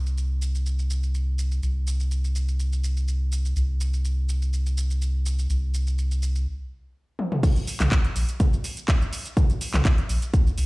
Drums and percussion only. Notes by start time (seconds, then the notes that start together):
0.07 shaker
0.18 shaker
0.42 shaker
0.55 shaker
0.66 shaker
0.79 shaker
0.90 shaker
1.03 shaker
1.15 shaker
1.39 shaker
1.52 shaker
1.63 shaker
1.87 shaker
2.00 shaker
2.11 shaker
2.24 shaker
2.36 shaker
2.48 shaker
2.60 shaker
2.73 shaker
2.84 shaker
2.97 shaker
3.08 shaker
3.32 shaker
3.45 shaker
3.56 shaker
3.81 shaker
3.94 shaker
4.05 shaker
4.29 shaker
4.42 shaker
4.53 shaker
4.66 shaker
4.78 shaker
4.90 shaker
5.02 shaker
5.26 shaker
5.39 shaker
5.50 shaker
5.74 shaker
5.87 shaker
5.98 shaker
6.11 shaker
6.23 shaker
6.36 shaker
7.19 high tom
7.32 mid tom
7.43 kick, closed hi-hat, mid tom, crash, shaker
7.56 closed hi-hat, shaker
7.67 open hi-hat, shaker
7.80 clap, closed hi-hat, mid tom, shaker
7.92 kick, clap, closed hi-hat, shaker
8.04 closed hi-hat
8.16 open hi-hat, shaker
8.29 closed hi-hat, shaker
8.40 kick, closed hi-hat, mid tom, shaker
8.53 shaker
8.64 open hi-hat, shaker
8.77 closed hi-hat, shaker
8.88 kick, clap, closed hi-hat, shaker
9.02 shaker
9.13 open hi-hat, shaker
9.26 closed hi-hat, shaker
9.37 kick, closed hi-hat, mid tom, shaker
9.50 closed hi-hat, shaker
9.61 open hi-hat, shaker
9.74 clap, closed hi-hat, mid tom, shaker
9.85 kick, clap, closed hi-hat, shaker
9.98 closed hi-hat
10.09 open hi-hat, shaker
10.22 closed hi-hat, shaker
10.34 kick, closed hi-hat, shaker
10.47 shaker
10.58 open hi-hat, shaker